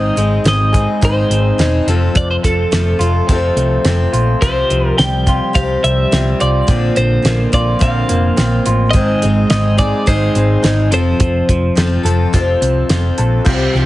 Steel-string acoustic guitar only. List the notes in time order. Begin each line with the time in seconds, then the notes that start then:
Already playing: G#2 D#3 G#3 C4 D#4 G#4
0.16 G#3 C4 D#4 G#4
0.44 G#3 C4 D#4 G#4
0.73 G#3 C4 D#4 G#4
1.01 G#2 D#3 G#3 C4 D#4 G#4
1.58 G#3 C4 D#4 G#4
1.88 F2 C3 F3 C4 F4 A4
2.44 F3 C4 F4 A4
2.71 F3 C4 F4 A4
2.99 F3 C4 F4 A4
3.29 F2 C3 F3 C4 F4 A4
3.86 F3 C4 F4 A4
4.42 C3 F3 C4 F4 G4
4.98 F3 C4 F4 G4
5.26 C4 F4 G4
5.53 C3 F3 C4 F4 G4
6.11 F3 C4 F4 G4
6.67 A#2 D3 F3 A#3 C4 F4
7.22 F3 A#3 C4 F4
7.52 F3 A#3 C4 F4
7.79 A#2 D3 F3 A#3 C4 F4
8.36 F3 A#3 C4 F4
8.93 G#2 D#3 G#3 C4 D#4 G#4
9.22 G#3 C4 D#4 G#4
9.50 G#3 D#4 G#4
9.77 G#3 C4 D#4 G#4
10.06 G#2 D#3 G#3 C4 D#4 G#4
10.63 G#3 C4 D#4 G#4
10.91 F2 C3 F3 C4 F4 A4
11.75 F3 C4 F4 A4
12.03 F3 C4 F4 A4
12.33 F2 C3 F3 C4 F4 A4
12.89 F3 F4 A4
13.45 C3 G3 C4 F4 G4
13.74 C4 F4 G4